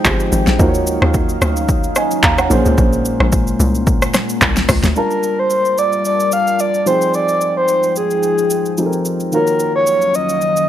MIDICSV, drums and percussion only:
0, 0, Header, 1, 2, 480
1, 0, Start_track
1, 0, Tempo, 545455
1, 525, Time_signature, 4, 2, 24, 8
1, 9406, End_track
2, 0, Start_track
2, 0, Title_t, "Drums"
2, 44, Note_on_c, 9, 82, 80
2, 46, Note_on_c, 9, 36, 100
2, 46, Note_on_c, 9, 39, 106
2, 132, Note_off_c, 9, 82, 0
2, 134, Note_off_c, 9, 36, 0
2, 134, Note_off_c, 9, 39, 0
2, 176, Note_on_c, 9, 82, 58
2, 264, Note_off_c, 9, 82, 0
2, 284, Note_on_c, 9, 82, 96
2, 372, Note_off_c, 9, 82, 0
2, 414, Note_on_c, 9, 38, 69
2, 416, Note_on_c, 9, 82, 53
2, 502, Note_off_c, 9, 38, 0
2, 504, Note_off_c, 9, 82, 0
2, 524, Note_on_c, 9, 36, 111
2, 524, Note_on_c, 9, 82, 66
2, 612, Note_off_c, 9, 36, 0
2, 612, Note_off_c, 9, 82, 0
2, 655, Note_on_c, 9, 82, 51
2, 743, Note_off_c, 9, 82, 0
2, 765, Note_on_c, 9, 82, 89
2, 853, Note_off_c, 9, 82, 0
2, 898, Note_on_c, 9, 37, 95
2, 986, Note_off_c, 9, 37, 0
2, 1003, Note_on_c, 9, 82, 74
2, 1005, Note_on_c, 9, 36, 97
2, 1091, Note_off_c, 9, 82, 0
2, 1093, Note_off_c, 9, 36, 0
2, 1136, Note_on_c, 9, 82, 54
2, 1224, Note_off_c, 9, 82, 0
2, 1247, Note_on_c, 9, 37, 105
2, 1247, Note_on_c, 9, 82, 86
2, 1335, Note_off_c, 9, 37, 0
2, 1335, Note_off_c, 9, 82, 0
2, 1377, Note_on_c, 9, 82, 60
2, 1465, Note_off_c, 9, 82, 0
2, 1484, Note_on_c, 9, 36, 125
2, 1484, Note_on_c, 9, 82, 74
2, 1572, Note_off_c, 9, 36, 0
2, 1572, Note_off_c, 9, 82, 0
2, 1617, Note_on_c, 9, 82, 64
2, 1705, Note_off_c, 9, 82, 0
2, 1721, Note_on_c, 9, 82, 101
2, 1725, Note_on_c, 9, 37, 89
2, 1809, Note_off_c, 9, 82, 0
2, 1813, Note_off_c, 9, 37, 0
2, 1858, Note_on_c, 9, 82, 61
2, 1946, Note_off_c, 9, 82, 0
2, 1964, Note_on_c, 9, 82, 82
2, 1966, Note_on_c, 9, 36, 101
2, 1966, Note_on_c, 9, 39, 102
2, 2052, Note_off_c, 9, 82, 0
2, 2054, Note_off_c, 9, 36, 0
2, 2054, Note_off_c, 9, 39, 0
2, 2096, Note_on_c, 9, 82, 55
2, 2098, Note_on_c, 9, 37, 104
2, 2184, Note_off_c, 9, 82, 0
2, 2186, Note_off_c, 9, 37, 0
2, 2206, Note_on_c, 9, 82, 90
2, 2294, Note_off_c, 9, 82, 0
2, 2338, Note_on_c, 9, 82, 55
2, 2426, Note_off_c, 9, 82, 0
2, 2445, Note_on_c, 9, 36, 107
2, 2446, Note_on_c, 9, 82, 67
2, 2533, Note_off_c, 9, 36, 0
2, 2534, Note_off_c, 9, 82, 0
2, 2577, Note_on_c, 9, 82, 50
2, 2665, Note_off_c, 9, 82, 0
2, 2686, Note_on_c, 9, 82, 88
2, 2774, Note_off_c, 9, 82, 0
2, 2819, Note_on_c, 9, 37, 94
2, 2907, Note_off_c, 9, 37, 0
2, 2924, Note_on_c, 9, 82, 74
2, 2926, Note_on_c, 9, 36, 98
2, 3012, Note_off_c, 9, 82, 0
2, 3014, Note_off_c, 9, 36, 0
2, 3056, Note_on_c, 9, 82, 53
2, 3144, Note_off_c, 9, 82, 0
2, 3168, Note_on_c, 9, 82, 87
2, 3256, Note_off_c, 9, 82, 0
2, 3298, Note_on_c, 9, 82, 57
2, 3386, Note_off_c, 9, 82, 0
2, 3405, Note_on_c, 9, 36, 123
2, 3405, Note_on_c, 9, 82, 72
2, 3493, Note_off_c, 9, 36, 0
2, 3493, Note_off_c, 9, 82, 0
2, 3538, Note_on_c, 9, 82, 64
2, 3540, Note_on_c, 9, 37, 93
2, 3626, Note_off_c, 9, 82, 0
2, 3628, Note_off_c, 9, 37, 0
2, 3642, Note_on_c, 9, 82, 104
2, 3647, Note_on_c, 9, 37, 91
2, 3647, Note_on_c, 9, 38, 65
2, 3730, Note_off_c, 9, 82, 0
2, 3735, Note_off_c, 9, 37, 0
2, 3735, Note_off_c, 9, 38, 0
2, 3779, Note_on_c, 9, 82, 60
2, 3867, Note_off_c, 9, 82, 0
2, 3884, Note_on_c, 9, 82, 80
2, 3887, Note_on_c, 9, 36, 100
2, 3887, Note_on_c, 9, 39, 104
2, 3972, Note_off_c, 9, 82, 0
2, 3975, Note_off_c, 9, 36, 0
2, 3975, Note_off_c, 9, 39, 0
2, 4017, Note_on_c, 9, 82, 56
2, 4019, Note_on_c, 9, 38, 75
2, 4105, Note_off_c, 9, 82, 0
2, 4107, Note_off_c, 9, 38, 0
2, 4124, Note_on_c, 9, 37, 103
2, 4125, Note_on_c, 9, 46, 75
2, 4125, Note_on_c, 9, 82, 92
2, 4126, Note_on_c, 9, 36, 99
2, 4212, Note_off_c, 9, 37, 0
2, 4213, Note_off_c, 9, 46, 0
2, 4213, Note_off_c, 9, 82, 0
2, 4214, Note_off_c, 9, 36, 0
2, 4254, Note_on_c, 9, 38, 71
2, 4257, Note_on_c, 9, 82, 55
2, 4342, Note_off_c, 9, 38, 0
2, 4345, Note_off_c, 9, 82, 0
2, 4364, Note_on_c, 9, 82, 61
2, 4452, Note_off_c, 9, 82, 0
2, 4494, Note_on_c, 9, 82, 45
2, 4582, Note_off_c, 9, 82, 0
2, 4605, Note_on_c, 9, 82, 80
2, 4693, Note_off_c, 9, 82, 0
2, 4842, Note_on_c, 9, 82, 65
2, 4930, Note_off_c, 9, 82, 0
2, 4974, Note_on_c, 9, 82, 50
2, 5062, Note_off_c, 9, 82, 0
2, 5086, Note_on_c, 9, 82, 80
2, 5174, Note_off_c, 9, 82, 0
2, 5215, Note_on_c, 9, 82, 52
2, 5303, Note_off_c, 9, 82, 0
2, 5323, Note_on_c, 9, 82, 66
2, 5411, Note_off_c, 9, 82, 0
2, 5456, Note_on_c, 9, 82, 58
2, 5544, Note_off_c, 9, 82, 0
2, 5560, Note_on_c, 9, 82, 91
2, 5648, Note_off_c, 9, 82, 0
2, 5697, Note_on_c, 9, 82, 53
2, 5785, Note_off_c, 9, 82, 0
2, 5802, Note_on_c, 9, 82, 72
2, 5890, Note_off_c, 9, 82, 0
2, 5934, Note_on_c, 9, 82, 53
2, 6022, Note_off_c, 9, 82, 0
2, 6042, Note_on_c, 9, 82, 79
2, 6130, Note_off_c, 9, 82, 0
2, 6174, Note_on_c, 9, 82, 50
2, 6262, Note_off_c, 9, 82, 0
2, 6282, Note_on_c, 9, 82, 60
2, 6370, Note_off_c, 9, 82, 0
2, 6411, Note_on_c, 9, 82, 46
2, 6499, Note_off_c, 9, 82, 0
2, 6522, Note_on_c, 9, 82, 80
2, 6610, Note_off_c, 9, 82, 0
2, 6760, Note_on_c, 9, 82, 66
2, 6848, Note_off_c, 9, 82, 0
2, 6893, Note_on_c, 9, 82, 50
2, 6981, Note_off_c, 9, 82, 0
2, 7004, Note_on_c, 9, 82, 79
2, 7092, Note_off_c, 9, 82, 0
2, 7133, Note_on_c, 9, 82, 54
2, 7221, Note_off_c, 9, 82, 0
2, 7242, Note_on_c, 9, 82, 64
2, 7330, Note_off_c, 9, 82, 0
2, 7377, Note_on_c, 9, 82, 59
2, 7465, Note_off_c, 9, 82, 0
2, 7482, Note_on_c, 9, 82, 94
2, 7570, Note_off_c, 9, 82, 0
2, 7618, Note_on_c, 9, 82, 53
2, 7706, Note_off_c, 9, 82, 0
2, 7723, Note_on_c, 9, 82, 71
2, 7811, Note_off_c, 9, 82, 0
2, 7856, Note_on_c, 9, 82, 53
2, 7944, Note_off_c, 9, 82, 0
2, 7965, Note_on_c, 9, 82, 83
2, 8053, Note_off_c, 9, 82, 0
2, 8097, Note_on_c, 9, 82, 49
2, 8185, Note_off_c, 9, 82, 0
2, 8205, Note_on_c, 9, 82, 61
2, 8293, Note_off_c, 9, 82, 0
2, 8335, Note_on_c, 9, 82, 47
2, 8423, Note_off_c, 9, 82, 0
2, 8445, Note_on_c, 9, 82, 80
2, 8533, Note_off_c, 9, 82, 0
2, 8683, Note_on_c, 9, 82, 67
2, 8771, Note_off_c, 9, 82, 0
2, 8815, Note_on_c, 9, 82, 49
2, 8903, Note_off_c, 9, 82, 0
2, 8927, Note_on_c, 9, 82, 77
2, 9015, Note_off_c, 9, 82, 0
2, 9057, Note_on_c, 9, 82, 51
2, 9145, Note_off_c, 9, 82, 0
2, 9165, Note_on_c, 9, 82, 62
2, 9253, Note_off_c, 9, 82, 0
2, 9298, Note_on_c, 9, 82, 60
2, 9386, Note_off_c, 9, 82, 0
2, 9406, End_track
0, 0, End_of_file